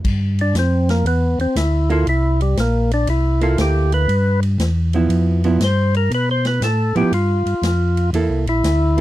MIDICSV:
0, 0, Header, 1, 5, 480
1, 0, Start_track
1, 0, Tempo, 505902
1, 41, Time_signature, 4, 2, 24, 8
1, 8545, End_track
2, 0, Start_track
2, 0, Title_t, "Tonewheel organ"
2, 0, Program_c, 0, 16
2, 392, Note_on_c, 0, 62, 73
2, 532, Note_off_c, 0, 62, 0
2, 560, Note_on_c, 0, 60, 70
2, 852, Note_off_c, 0, 60, 0
2, 856, Note_on_c, 0, 58, 74
2, 1004, Note_off_c, 0, 58, 0
2, 1017, Note_on_c, 0, 59, 69
2, 1321, Note_off_c, 0, 59, 0
2, 1338, Note_on_c, 0, 60, 74
2, 1484, Note_off_c, 0, 60, 0
2, 1491, Note_on_c, 0, 64, 68
2, 1798, Note_off_c, 0, 64, 0
2, 1822, Note_on_c, 0, 65, 83
2, 1967, Note_off_c, 0, 65, 0
2, 1985, Note_on_c, 0, 64, 77
2, 2285, Note_off_c, 0, 64, 0
2, 2297, Note_on_c, 0, 55, 55
2, 2444, Note_off_c, 0, 55, 0
2, 2468, Note_on_c, 0, 58, 73
2, 2767, Note_off_c, 0, 58, 0
2, 2786, Note_on_c, 0, 62, 84
2, 2929, Note_off_c, 0, 62, 0
2, 2939, Note_on_c, 0, 64, 67
2, 3242, Note_off_c, 0, 64, 0
2, 3254, Note_on_c, 0, 65, 80
2, 3403, Note_off_c, 0, 65, 0
2, 3426, Note_on_c, 0, 67, 75
2, 3726, Note_off_c, 0, 67, 0
2, 3737, Note_on_c, 0, 71, 87
2, 4177, Note_off_c, 0, 71, 0
2, 5351, Note_on_c, 0, 72, 69
2, 5648, Note_off_c, 0, 72, 0
2, 5662, Note_on_c, 0, 70, 77
2, 5807, Note_off_c, 0, 70, 0
2, 5830, Note_on_c, 0, 71, 76
2, 5972, Note_off_c, 0, 71, 0
2, 5987, Note_on_c, 0, 72, 84
2, 6130, Note_off_c, 0, 72, 0
2, 6139, Note_on_c, 0, 71, 74
2, 6286, Note_off_c, 0, 71, 0
2, 6298, Note_on_c, 0, 69, 76
2, 6601, Note_off_c, 0, 69, 0
2, 6616, Note_on_c, 0, 67, 83
2, 6763, Note_off_c, 0, 67, 0
2, 6775, Note_on_c, 0, 65, 71
2, 7689, Note_off_c, 0, 65, 0
2, 8056, Note_on_c, 0, 64, 83
2, 8545, Note_off_c, 0, 64, 0
2, 8545, End_track
3, 0, Start_track
3, 0, Title_t, "Hollow-body jazz guitar"
3, 0, Program_c, 1, 26
3, 1800, Note_on_c, 1, 58, 63
3, 1805, Note_on_c, 1, 64, 69
3, 1814, Note_on_c, 1, 69, 70
3, 1944, Note_off_c, 1, 58, 0
3, 1947, Note_off_c, 1, 64, 0
3, 1952, Note_off_c, 1, 69, 0
3, 3239, Note_on_c, 1, 58, 60
3, 3246, Note_on_c, 1, 64, 67
3, 3252, Note_on_c, 1, 69, 72
3, 3848, Note_off_c, 1, 58, 0
3, 3852, Note_off_c, 1, 64, 0
3, 3855, Note_off_c, 1, 69, 0
3, 4690, Note_on_c, 1, 53, 63
3, 4698, Note_on_c, 1, 59, 62
3, 4702, Note_on_c, 1, 64, 60
3, 5134, Note_off_c, 1, 53, 0
3, 5138, Note_off_c, 1, 59, 0
3, 5141, Note_off_c, 1, 64, 0
3, 5166, Note_on_c, 1, 53, 61
3, 5170, Note_on_c, 1, 59, 60
3, 5179, Note_on_c, 1, 64, 65
3, 5308, Note_off_c, 1, 53, 0
3, 5310, Note_off_c, 1, 59, 0
3, 5314, Note_off_c, 1, 64, 0
3, 6597, Note_on_c, 1, 53, 65
3, 6605, Note_on_c, 1, 59, 68
3, 6611, Note_on_c, 1, 64, 58
3, 6743, Note_off_c, 1, 53, 0
3, 6746, Note_off_c, 1, 59, 0
3, 6750, Note_off_c, 1, 64, 0
3, 7728, Note_on_c, 1, 58, 60
3, 7731, Note_on_c, 1, 64, 59
3, 7734, Note_on_c, 1, 69, 65
3, 8012, Note_off_c, 1, 58, 0
3, 8014, Note_off_c, 1, 64, 0
3, 8016, Note_off_c, 1, 69, 0
3, 8514, Note_on_c, 1, 58, 56
3, 8545, Note_off_c, 1, 58, 0
3, 8545, End_track
4, 0, Start_track
4, 0, Title_t, "Tonewheel organ"
4, 0, Program_c, 2, 16
4, 42, Note_on_c, 2, 43, 78
4, 507, Note_off_c, 2, 43, 0
4, 511, Note_on_c, 2, 41, 81
4, 981, Note_off_c, 2, 41, 0
4, 989, Note_on_c, 2, 40, 80
4, 1293, Note_off_c, 2, 40, 0
4, 1314, Note_on_c, 2, 40, 36
4, 1396, Note_off_c, 2, 40, 0
4, 1474, Note_on_c, 2, 38, 82
4, 1943, Note_off_c, 2, 38, 0
4, 1958, Note_on_c, 2, 36, 83
4, 2426, Note_off_c, 2, 36, 0
4, 2438, Note_on_c, 2, 34, 84
4, 2906, Note_off_c, 2, 34, 0
4, 2917, Note_on_c, 2, 36, 81
4, 3385, Note_off_c, 2, 36, 0
4, 3397, Note_on_c, 2, 38, 82
4, 3865, Note_off_c, 2, 38, 0
4, 3874, Note_on_c, 2, 43, 88
4, 4343, Note_off_c, 2, 43, 0
4, 4350, Note_on_c, 2, 40, 86
4, 4821, Note_off_c, 2, 40, 0
4, 4830, Note_on_c, 2, 41, 84
4, 5301, Note_off_c, 2, 41, 0
4, 5315, Note_on_c, 2, 43, 89
4, 5784, Note_off_c, 2, 43, 0
4, 5795, Note_on_c, 2, 47, 78
4, 6263, Note_off_c, 2, 47, 0
4, 6273, Note_on_c, 2, 45, 84
4, 6575, Note_off_c, 2, 45, 0
4, 6595, Note_on_c, 2, 45, 41
4, 6676, Note_off_c, 2, 45, 0
4, 6751, Note_on_c, 2, 43, 79
4, 7054, Note_off_c, 2, 43, 0
4, 7076, Note_on_c, 2, 43, 38
4, 7157, Note_off_c, 2, 43, 0
4, 7227, Note_on_c, 2, 41, 84
4, 7699, Note_off_c, 2, 41, 0
4, 7713, Note_on_c, 2, 40, 77
4, 7871, Note_off_c, 2, 40, 0
4, 7872, Note_on_c, 2, 36, 47
4, 8031, Note_on_c, 2, 34, 63
4, 8035, Note_off_c, 2, 36, 0
4, 8183, Note_off_c, 2, 34, 0
4, 8195, Note_on_c, 2, 38, 86
4, 8545, Note_off_c, 2, 38, 0
4, 8545, End_track
5, 0, Start_track
5, 0, Title_t, "Drums"
5, 42, Note_on_c, 9, 36, 67
5, 44, Note_on_c, 9, 49, 65
5, 137, Note_off_c, 9, 36, 0
5, 138, Note_off_c, 9, 49, 0
5, 365, Note_on_c, 9, 51, 45
5, 460, Note_off_c, 9, 51, 0
5, 521, Note_on_c, 9, 44, 54
5, 521, Note_on_c, 9, 51, 54
5, 523, Note_on_c, 9, 38, 59
5, 616, Note_off_c, 9, 44, 0
5, 616, Note_off_c, 9, 51, 0
5, 617, Note_off_c, 9, 38, 0
5, 844, Note_on_c, 9, 51, 47
5, 846, Note_on_c, 9, 38, 52
5, 939, Note_off_c, 9, 51, 0
5, 941, Note_off_c, 9, 38, 0
5, 1004, Note_on_c, 9, 51, 54
5, 1099, Note_off_c, 9, 51, 0
5, 1323, Note_on_c, 9, 51, 39
5, 1418, Note_off_c, 9, 51, 0
5, 1483, Note_on_c, 9, 44, 59
5, 1483, Note_on_c, 9, 51, 64
5, 1485, Note_on_c, 9, 38, 62
5, 1578, Note_off_c, 9, 44, 0
5, 1578, Note_off_c, 9, 51, 0
5, 1579, Note_off_c, 9, 38, 0
5, 1803, Note_on_c, 9, 51, 40
5, 1897, Note_off_c, 9, 51, 0
5, 1962, Note_on_c, 9, 51, 53
5, 2057, Note_off_c, 9, 51, 0
5, 2283, Note_on_c, 9, 51, 45
5, 2378, Note_off_c, 9, 51, 0
5, 2442, Note_on_c, 9, 44, 51
5, 2442, Note_on_c, 9, 51, 57
5, 2443, Note_on_c, 9, 38, 55
5, 2536, Note_off_c, 9, 44, 0
5, 2536, Note_off_c, 9, 51, 0
5, 2538, Note_off_c, 9, 38, 0
5, 2764, Note_on_c, 9, 51, 46
5, 2859, Note_off_c, 9, 51, 0
5, 2915, Note_on_c, 9, 51, 55
5, 3010, Note_off_c, 9, 51, 0
5, 3238, Note_on_c, 9, 51, 41
5, 3333, Note_off_c, 9, 51, 0
5, 3397, Note_on_c, 9, 44, 49
5, 3397, Note_on_c, 9, 51, 67
5, 3399, Note_on_c, 9, 38, 65
5, 3492, Note_off_c, 9, 44, 0
5, 3492, Note_off_c, 9, 51, 0
5, 3494, Note_off_c, 9, 38, 0
5, 3721, Note_on_c, 9, 51, 44
5, 3816, Note_off_c, 9, 51, 0
5, 3880, Note_on_c, 9, 51, 52
5, 3975, Note_off_c, 9, 51, 0
5, 4200, Note_on_c, 9, 51, 44
5, 4295, Note_off_c, 9, 51, 0
5, 4360, Note_on_c, 9, 44, 52
5, 4360, Note_on_c, 9, 51, 60
5, 4362, Note_on_c, 9, 38, 61
5, 4455, Note_off_c, 9, 44, 0
5, 4455, Note_off_c, 9, 51, 0
5, 4457, Note_off_c, 9, 38, 0
5, 4679, Note_on_c, 9, 51, 43
5, 4773, Note_off_c, 9, 51, 0
5, 4837, Note_on_c, 9, 51, 53
5, 4932, Note_off_c, 9, 51, 0
5, 5160, Note_on_c, 9, 51, 41
5, 5254, Note_off_c, 9, 51, 0
5, 5318, Note_on_c, 9, 44, 59
5, 5318, Note_on_c, 9, 51, 63
5, 5320, Note_on_c, 9, 38, 68
5, 5413, Note_off_c, 9, 44, 0
5, 5413, Note_off_c, 9, 51, 0
5, 5415, Note_off_c, 9, 38, 0
5, 5639, Note_on_c, 9, 51, 42
5, 5734, Note_off_c, 9, 51, 0
5, 5800, Note_on_c, 9, 51, 57
5, 5895, Note_off_c, 9, 51, 0
5, 6117, Note_on_c, 9, 51, 45
5, 6119, Note_on_c, 9, 38, 37
5, 6212, Note_off_c, 9, 51, 0
5, 6214, Note_off_c, 9, 38, 0
5, 6280, Note_on_c, 9, 44, 59
5, 6280, Note_on_c, 9, 51, 59
5, 6282, Note_on_c, 9, 38, 64
5, 6375, Note_off_c, 9, 44, 0
5, 6375, Note_off_c, 9, 51, 0
5, 6377, Note_off_c, 9, 38, 0
5, 6600, Note_on_c, 9, 51, 43
5, 6695, Note_off_c, 9, 51, 0
5, 6761, Note_on_c, 9, 51, 59
5, 6855, Note_off_c, 9, 51, 0
5, 7082, Note_on_c, 9, 51, 44
5, 7177, Note_off_c, 9, 51, 0
5, 7241, Note_on_c, 9, 44, 53
5, 7241, Note_on_c, 9, 51, 67
5, 7243, Note_on_c, 9, 38, 63
5, 7336, Note_off_c, 9, 44, 0
5, 7336, Note_off_c, 9, 51, 0
5, 7338, Note_off_c, 9, 38, 0
5, 7563, Note_on_c, 9, 51, 45
5, 7657, Note_off_c, 9, 51, 0
5, 7719, Note_on_c, 9, 51, 59
5, 7814, Note_off_c, 9, 51, 0
5, 8039, Note_on_c, 9, 51, 44
5, 8134, Note_off_c, 9, 51, 0
5, 8199, Note_on_c, 9, 44, 58
5, 8199, Note_on_c, 9, 51, 63
5, 8201, Note_on_c, 9, 38, 64
5, 8294, Note_off_c, 9, 44, 0
5, 8294, Note_off_c, 9, 51, 0
5, 8296, Note_off_c, 9, 38, 0
5, 8545, End_track
0, 0, End_of_file